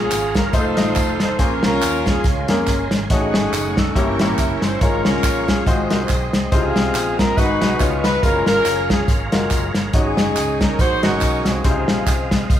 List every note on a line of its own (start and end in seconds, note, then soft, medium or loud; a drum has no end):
0.00 0.32 C#3 medium
0.00 0.14 A#3 medium
0.00 0.14 F4 medium
0.00 0.50 F4 medium
0.00 0.15 G#4 medium
0.00 0.31 G#4 medium
0.00 0.53 G#4 medium
0.00 0.15 C#5 medium
0.00 0.53 C#5 medium
0.00 1.37 F5 medium
0.00 0.53 A#5 medium
0.11 0.47 G#1 medium
0.11 clap loud
0.11 closed hi-hat medium
0.11 tambourine loud
0.34 0.54 A#4 medium
0.34 kick medium
0.34 snare loud
0.34 closed hi-hat medium
0.34 tambourine soft
0.53 0.74 F1 medium
0.53 0.73 A3 medium
0.53 0.73 D#4 medium
0.53 1.36 D#4 medium
0.53 0.73 F4 medium
0.53 1.38 A4 medium
0.53 1.35 A4 medium
0.53 1.20 C5 loud
0.53 0.73 C5 medium
0.53 1.38 D#5 medium
0.53 3.08 C6 medium
0.53 kick loud
0.53 closed hi-hat medium
0.53 tambourine medium
0.77 0.93 A1 medium
0.77 1.11 A3 medium
0.77 1.11 D#4 medium
0.77 1.11 F4 medium
0.77 1.11 D#5 medium
0.77 snare loud
0.77 closed hi-hat medium
0.77 tambourine medium
0.96 1.33 F1 medium
0.96 kick medium
0.96 clap medium
0.96 closed hi-hat medium
0.96 tambourine medium
1.20 1.38 C5 medium
1.20 snare medium
1.20 closed hi-hat medium
1.20 tambourine medium
1.39 1.60 A#1 loud
1.39 2.02 A#2 medium
1.39 1.85 A#3 medium
1.39 3.08 C#4 medium
1.39 1.85 C#4 medium
1.39 1.64 C#4 medium
1.39 1.64 F4 medium
1.39 1.85 G#4 medium
1.39 3.08 A#4 medium
1.39 1.63 A#4 medium
1.39 1.85 C5 medium
1.39 3.08 G#5 medium
1.39 kick loud
1.39 closed hi-hat medium
1.39 tambourine medium
1.63 1.79 C2 medium
1.63 2.25 C#4 medium
1.63 2.25 F4 medium
1.63 2.04 A#4 loud
1.63 snare loud
1.63 closed hi-hat medium
1.63 tambourine medium
1.82 2.19 D#2 medium
1.82 clap loud
1.82 closed hi-hat medium
1.82 tambourine loud
2.06 2.25 G#4 medium
2.06 kick medium
2.06 snare loud
2.06 closed hi-hat medium
2.06 tambourine soft
2.24 2.45 C#2 medium
2.24 3.07 G#3 medium
2.24 3.07 C#4 soft
2.24 2.65 F4 medium
2.24 kick loud
2.24 closed hi-hat medium
2.24 tambourine medium
2.48 2.65 F2 medium
2.48 2.82 A#3 medium
2.48 2.82 C#4 medium
2.48 2.82 G#4 medium
2.48 2.82 A#4 medium
2.48 snare medium
2.48 closed hi-hat medium
2.48 tambourine medium
2.67 2.88 G1 medium
2.67 kick medium
2.67 clap medium
2.67 closed hi-hat medium
2.67 tambourine medium
2.91 3.07 G#1 medium
2.91 snare medium
2.91 closed hi-hat medium
2.91 tambourine medium
3.10 3.31 A1 loud
3.10 3.73 A2 medium
3.10 3.95 A3 medium
3.10 3.56 A3 medium
3.10 3.92 C#4 medium
3.10 3.56 D#4 medium
3.10 3.92 D#4 medium
3.10 3.56 F#4 medium
3.10 3.73 G#4 medium
3.10 3.56 C#5 medium
3.10 3.95 D#5 medium
3.10 3.95 F#5 medium
3.10 5.64 C#6 medium
3.10 kick loud
3.10 closed hi-hat medium
3.10 tambourine medium
3.34 3.50 G#1 medium
3.34 snare loud
3.34 closed hi-hat medium
3.34 tambourine medium
3.52 3.89 F#1 medium
3.52 clap loud
3.52 closed hi-hat medium
3.52 tambourine loud
3.77 3.94 A4 medium
3.77 kick medium
3.77 snare loud
3.77 closed hi-hat medium
3.77 tambourine soft
3.95 4.16 G1 medium
3.95 4.59 G2 medium
3.95 4.15 A#3 medium
3.95 4.77 C#4 medium
3.95 4.15 E4 medium
3.95 4.78 E4 medium
3.95 4.15 G4 medium
3.95 4.62 A#4 medium
3.95 4.80 A#4 medium
3.95 4.15 C#5 medium
3.95 4.80 E5 medium
3.95 4.80 G5 medium
3.95 kick loud
3.95 closed hi-hat medium
3.95 tambourine medium
4.19 4.35 A1 medium
4.19 4.53 A#3 medium
4.19 4.53 E4 medium
4.19 4.53 G4 medium
4.19 4.53 C#5 medium
4.19 snare loud
4.19 closed hi-hat medium
4.19 tambourine medium
4.38 4.59 F#1 medium
4.38 kick medium
4.38 clap medium
4.38 closed hi-hat medium
4.38 tambourine medium
4.62 4.78 G1 medium
4.62 4.81 C5 loud
4.62 snare medium
4.62 closed hi-hat medium
4.62 tambourine medium
4.81 5.02 G#1 loud
4.81 5.44 G#2 medium
4.81 5.27 G#3 medium
4.81 5.27 C#4 medium
4.81 5.05 C#4 medium
4.81 5.27 F4 medium
4.81 5.05 F4 medium
4.81 6.50 G#4 medium
4.81 5.04 A#4 medium
4.81 5.66 C#5 medium
4.81 5.28 C#5 medium
4.81 5.65 F5 medium
4.81 kick loud
4.81 closed hi-hat medium
4.81 tambourine medium
5.05 5.21 C#2 medium
5.05 5.63 C#4 medium
5.05 5.63 F4 medium
5.05 5.45 A#4 loud
5.05 snare loud
5.05 closed hi-hat medium
5.05 tambourine medium
5.23 5.60 A#1 medium
5.23 kick medium
5.23 clap loud
5.23 closed hi-hat medium
5.23 tambourine loud
5.47 5.65 G#4 medium
5.47 kick medium
5.47 snare loud
5.47 closed hi-hat medium
5.47 tambourine medium
5.66 5.87 G#1 medium
5.66 6.30 G#2 medium
5.66 5.86 G#3 medium
5.66 6.48 C4 medium
5.66 5.86 D#4 medium
5.66 6.09 F4 medium
5.66 5.86 F#4 medium
5.66 5.86 C5 medium
5.66 7.78 D#5 medium
5.66 6.51 C6 medium
5.66 kick loud
5.66 closed hi-hat medium
5.66 tambourine medium
5.90 6.06 C2 medium
5.90 6.24 G#3 medium
5.90 6.24 D#4 medium
5.90 6.24 F#4 medium
5.90 5.95 A#4 medium
5.90 snare loud
5.90 closed hi-hat medium
5.90 tambourine medium
5.96 6.26 C5 medium
6.09 6.30 B1 medium
6.09 kick medium
6.09 clap medium
6.09 closed hi-hat medium
6.09 tambourine medium
6.33 6.49 C2 medium
6.33 snare loud
6.33 closed hi-hat medium
6.33 tambourine medium
6.52 6.73 C#2 medium
6.52 6.98 C3 medium
6.52 7.15 C#3 medium
6.52 7.37 C4 medium
6.52 7.34 C4 medium
6.52 6.98 D#4 medium
6.52 6.58 E4 soft
6.52 7.34 F4 medium
6.52 7.15 G#4 medium
6.52 6.98 C5 medium
6.52 7.37 F5 medium
6.52 kick loud
6.52 closed hi-hat medium
6.52 tambourine medium
6.57 7.00 F4 medium
6.76 6.92 C2 medium
6.76 snare loud
6.76 closed hi-hat medium
6.76 tambourine medium
6.94 7.31 A#1 medium
6.94 clap loud
6.94 closed hi-hat medium
6.94 tambourine loud
7.19 7.37 A#4 loud
7.19 kick medium
7.19 snare loud
7.19 closed hi-hat medium
7.19 tambourine medium
7.36 7.58 G#1 medium
7.36 7.77 G#2 medium
7.36 7.57 G#3 medium
7.36 7.57 D#4 medium
7.36 7.85 D#4 medium
7.36 7.85 F#4 medium
7.36 7.57 F#4 medium
7.36 7.80 G#4 medium
7.36 7.85 B4 medium
7.36 7.57 B4 medium
7.36 7.80 F#5 medium
7.36 7.80 B5 medium
7.36 kick loud
7.36 closed hi-hat medium
7.36 tambourine medium
7.61 7.77 B1 medium
7.61 7.80 G#3 medium
7.61 7.78 D#4 medium
7.61 7.80 F#4 medium
7.61 7.80 B4 medium
7.61 snare loud
7.61 closed hi-hat medium
7.61 tambourine soft
7.79 8.16 C#2 loud
7.79 8.20 C#3 medium
7.79 8.15 B3 medium
7.79 8.15 D#4 medium
7.79 8.15 F4 medium
7.79 8.23 B4 medium
7.79 8.15 C#5 medium
7.79 8.22 D#5 medium
7.79 9.92 F5 medium
7.79 8.23 C#6 medium
7.79 kick medium
7.79 clap medium
7.79 closed hi-hat medium
7.79 tambourine medium
8.02 8.20 B4 medium
8.02 snare loud
8.02 closed hi-hat medium
8.02 tambourine medium
8.21 8.44 F#1 loud
8.21 8.69 F#3 medium
8.21 8.68 G#3 medium
8.21 8.47 C#4 medium
8.21 8.68 F4 medium
8.21 8.47 F4 medium
8.21 11.61 G#4 medium
8.21 8.45 A#4 loud
8.21 8.69 A#4 medium
8.21 11.61 C#5 medium
8.21 9.92 A#5 medium
8.21 kick loud
8.21 closed hi-hat medium
8.21 tambourine medium
8.46 8.63 G#1 medium
8.46 9.29 C#4 medium
8.46 9.07 F4 medium
8.46 8.86 A#4 loud
8.46 snare loud
8.46 closed hi-hat medium
8.46 tambourine medium
8.66 9.02 F#1 medium
8.66 clap loud
8.66 closed hi-hat medium
8.66 tambourine loud
8.89 9.08 G#4 medium
8.89 kick medium
8.89 snare loud
8.89 closed hi-hat medium
8.89 tambourine medium
9.08 9.29 G#1 medium
9.08 9.90 G#3 medium
9.08 9.90 A#3 medium
9.08 9.51 F4 medium
9.08 kick loud
9.08 closed hi-hat medium
9.08 tambourine medium
9.32 9.48 F#1 medium
9.32 9.65 G#3 medium
9.32 9.65 F4 medium
9.32 9.65 F#4 medium
9.32 9.66 A#4 medium
9.32 snare loud
9.32 closed hi-hat medium
9.32 tambourine soft
9.50 9.72 F#1 loud
9.50 kick medium
9.50 clap medium
9.50 closed hi-hat medium
9.50 tambourine medium
9.75 9.91 G1 medium
9.75 snare medium
9.75 closed hi-hat medium
9.75 tambourine medium
9.93 10.14 G#1 loud
9.93 10.57 G#2 medium
9.93 10.40 G#3 medium
9.93 10.75 C#4 medium
9.93 10.40 D#4 medium
9.93 10.76 D#4 medium
9.93 10.40 F#4 medium
9.93 10.57 G#4 medium
9.93 10.40 C#5 medium
9.93 11.62 D#5 medium
9.93 kick loud
9.93 closed hi-hat medium
9.93 tambourine medium
10.17 10.34 F#1 medium
10.17 snare loud
10.17 closed hi-hat medium
10.17 tambourine medium
10.36 10.73 C#2 medium
10.36 clap loud
10.36 closed hi-hat medium
10.36 tambourine loud
10.61 10.79 A#4 medium
10.61 kick medium
10.61 snare loud
10.61 closed hi-hat medium
10.61 tambourine medium
10.79 11.00 A#1 medium
10.79 11.61 D#4 medium
10.79 11.02 F#4 medium
10.79 11.04 C5 loud
10.79 kick loud
10.79 closed hi-hat medium
10.79 tambourine medium
11.03 11.19 G#1 medium
11.03 11.36 G#3 medium
11.03 11.61 C#4 medium
11.03 11.36 D#4 medium
11.03 11.61 F#4 medium
11.03 11.36 F#4 medium
11.03 11.46 A#4 loud
11.03 11.36 D#5 medium
11.03 snare loud
11.03 closed hi-hat medium
11.03 tambourine medium
11.21 11.42 B1 medium
11.21 kick medium
11.21 clap medium
11.21 closed hi-hat medium
11.21 tambourine medium
11.45 11.62 C2 medium
11.45 12.60 C4 medium
11.45 12.60 F4 medium
11.45 12.60 G#4 medium
11.45 snare medium
11.45 closed hi-hat medium
11.45 tambourine medium
11.63 11.85 C#2 loud
11.63 12.11 C3 medium
11.63 12.28 C#3 medium
11.63 12.11 D#4 medium
11.63 11.71 E4 medium
11.63 12.60 C5 medium
11.63 12.11 C5 medium
11.63 12.60 D#5 medium
11.63 12.60 F5 medium
11.63 kick loud
11.63 closed hi-hat medium
11.63 tambourine medium
11.70 12.14 F4 medium
11.88 12.05 A#1 medium
11.88 snare loud
11.88 closed hi-hat medium
11.88 tambourine medium
12.07 12.43 C2 medium
12.07 kick medium
12.07 clap loud
12.07 closed hi-hat medium
12.07 tambourine loud
12.31 kick medium
12.31 snare loud
12.31 closed hi-hat medium
12.31 tambourine soft
12.50 12.60 C#2 medium
12.50 kick loud
12.50 closed hi-hat medium
12.50 tambourine medium